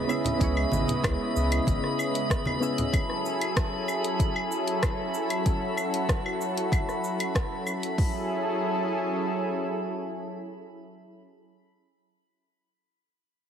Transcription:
Already playing: C#3 G#3 B3 E4 D#5 B5
0.07 B3 C#4 E4 G#4 E5, cabasa, claves
0.25 closed hi-hat, low conga, cabasa
0.38 C#2 B3 C#4 E4, kick, closed hi-hat, cabasa
0.42 G#4 C#5
0.57 claves
0.72 G#1, high conga, cabasa
0.88 closed hi-hat, low conga, cabasa
1.04 C#2, kick, cross-stick, closed hi-hat, cabasa, claves
1.36 C#2, cabasa
1.52 closed hi-hat, cabasa, claves
1.67 G#1, kick, closed hi-hat, high conga, cabasa
1.84 cross-stick
1.99 cabasa, claves
2.15 closed hi-hat, cabasa
2.30 kick, cross-stick, closed hi-hat, cabasa
2.45 high conga, claves
2.60 B3 C#4 E4 G#4 E5, cabasa
2.78 closed hi-hat, low conga, cabasa
2.93 F#3 C#4 E4 G#4 A4, kick, closed hi-hat, cabasa, claves
3.10 cross-stick
3.26 cabasa
3.41 closed hi-hat, cabasa, claves
3.56 kick, cross-stick, closed hi-hat, cabasa
3.88 cabasa, claves
4.04 closed hi-hat, cabasa
4.20 kick, closed hi-hat, cabasa
4.36 claves
4.52 cabasa
4.68 closed hi-hat, cabasa
4.83 kick, cross-stick, closed hi-hat, cabasa, claves
5.14 cabasa
5.30 closed hi-hat, cabasa, claves
5.46 F#4, kick, closed hi-hat, cabasa
5.77 cabasa, claves
5.94 closed hi-hat, cabasa
6.09 kick, cross-stick, closed hi-hat, cabasa
6.26 claves
6.41 cabasa
6.57 closed hi-hat, cabasa
6.72 kick, closed hi-hat, cabasa, claves
6.89 cross-stick, cabasa
7.04 cabasa
7.20 closed hi-hat, cabasa, claves
7.35 kick, cross-stick, closed hi-hat, cabasa
7.67 cabasa, claves
7.83 closed hi-hat, cabasa
7.98 F#3 C#4 E4 G#4 A4, kick, open hi-hat

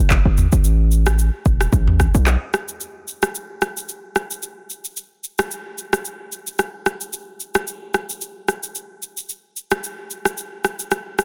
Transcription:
0.00 F#1
0.10 kick, clap, shaker
0.25 G1
0.38 mid tom, shaker
0.52 G1, shaker
0.64 A1, shaker
0.92 shaker
1.06 cross-stick, shaker
1.19 shaker
1.46 E1, kick, shaker
1.61 cross-stick, shaker
1.73 A1, kick, shaker
1.87 mid tom
2.00 kick, cross-stick, shaker
2.15 B1, shaker
2.26 cross-stick, clap, shaker
2.54 cross-stick, shaker
2.69 shaker
2.81 shaker
3.08 shaker
3.22 cross-stick, shaker
3.35 shaker
3.62 cross-stick, shaker
3.77 shaker
3.89 shaker
4.16 cross-stick, shaker
4.31 shaker
4.43 shaker
4.70 shaker
4.85 shaker
4.97 shaker
5.24 shaker
5.39 cross-stick, shaker
5.51 shaker
5.78 shaker
5.93 cross-stick, shaker
6.05 shaker
6.32 shaker
6.47 shaker
6.59 cross-stick, shaker
6.86 cross-stick, shaker
7.01 shaker
7.13 shaker
7.40 shaker
7.55 cross-stick, shaker
7.68 shaker
7.94 cross-stick, shaker
8.10 shaker
8.21 shaker
8.48 cross-stick, shaker
8.63 shaker
8.75 shaker
9.03 shaker
9.17 shaker
9.29 shaker
9.57 shaker
9.71 cross-stick, shaker
9.84 shaker
10.11 shaker
10.25 cross-stick, shaker
10.38 shaker
10.65 cross-stick, shaker
10.79 shaker
10.91 cross-stick, shaker
11.19 cross-stick, shaker

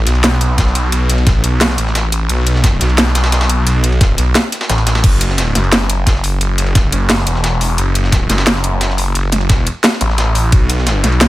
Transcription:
0.07 B1, snare, closed hi-hat, ride
0.15 ride
0.24 snare, closed hi-hat, ride
0.32 snare
0.41 closed hi-hat, ride
0.58 kick, snare, closed hi-hat, ride
0.67 snare
0.75 closed hi-hat, ride
0.92 B1, closed hi-hat, ride
1.09 closed hi-hat, ride
1.18 ride
1.27 kick, snare, closed hi-hat, ride
1.44 B1, closed hi-hat, ride
1.61 snare, closed hi-hat, open hi-hat
1.69 snare
1.78 A1, closed hi-hat, ride
1.87 snare
1.95 snare, closed hi-hat, ride
2.12 closed hi-hat, ride
2.29 B1, closed hi-hat, ride
2.47 closed hi-hat, ride
2.55 snare
2.64 kick, snare, closed hi-hat, ride
2.81 B1, snare, closed hi-hat, ride
2.90 ride
2.98 snare, closed hi-hat, ride
3.07 snare
3.15 snare, closed hi-hat, ride
3.24 snare, ride
3.32 snare, closed hi-hat, ride
3.41 snare, ride
3.49 closed hi-hat, ride
3.67 B1, closed hi-hat, ride
3.84 closed hi-hat, ride
3.92 ride
4.01 kick, snare, closed hi-hat, ride
4.18 B1, closed hi-hat, ride
4.35 snare, closed hi-hat, ride
4.52 snare, closed hi-hat, ride
4.61 snare, ride
4.69 A1, snare, closed hi-hat, ride
4.78 snare, ride
4.87 snare, closed hi-hat, ride
4.95 snare, ride
5.04 F#1, kick, closed hi-hat, ride, crash
5.21 closed hi-hat, ride
5.30 snare
5.38 snare, closed hi-hat, ride
5.55 F#1, snare, closed hi-hat, ride
5.64 ride
5.72 snare, closed hi-hat, ride
5.81 snare
5.89 closed hi-hat, ride
6.07 kick, snare, closed hi-hat, ride
6.15 snare
6.24 open hi-hat, ride
6.41 F#1, closed hi-hat, ride
6.58 closed hi-hat, ride
6.67 ride
6.75 kick, snare, closed hi-hat, ride
6.92 F#1, closed hi-hat, ride
7.09 snare, closed hi-hat, open hi-hat
7.18 snare
7.27 E1, closed hi-hat, ride
7.35 snare
7.44 snare, closed hi-hat, ride
7.61 open hi-hat, ride
7.78 F#1, closed hi-hat, ride
7.95 closed hi-hat, ride
8.04 snare
8.12 kick, snare, closed hi-hat, ride
8.29 F#1, snare, closed hi-hat, ride
8.38 snare, ride
8.47 snare, closed hi-hat, ride
8.55 snare
8.64 closed hi-hat
8.81 snare, closed hi-hat, ride
8.90 snare
8.98 open hi-hat, ride
9.15 F#1, closed hi-hat, ride
9.32 snare, closed hi-hat, ride
9.41 ride
9.49 kick, snare, closed hi-hat, ride
9.67 closed hi-hat, ride
9.84 snare, closed hi-hat, open hi-hat
9.92 snare
10.01 A1, closed hi-hat, ride
10.10 snare
10.18 snare, closed hi-hat, ride
10.35 open hi-hat, ride
10.52 B1, kick, closed hi-hat, ride
10.70 closed hi-hat, ride
10.78 snare
10.87 snare, closed hi-hat, ride
11.04 B1, snare, closed hi-hat, ride
11.12 ride
11.21 snare, closed hi-hat, ride

